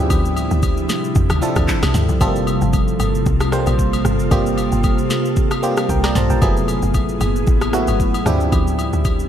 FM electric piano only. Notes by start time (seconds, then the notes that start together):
Already playing: F3 C4 D4 E4 G4
1.41 F3 C4 D4 E4 A4
2.20 G3 A3 C4 F4 A4
2.27 A#3
3.52 G3 A#3 C4 F4 C5
4.31 G3 A#3 C4 F4 G4
5.62 G3 A#3 C4 F4 G4
5.89 A#4 G5
6.04 D5 A#5
6.16 C5 A5
6.30 A#4 G5
6.41 F#3 A3 B3 E4 G#4
7.73 F#3 A3 B3 E4 F#4
8.26 F3 C4 D4 E4 G4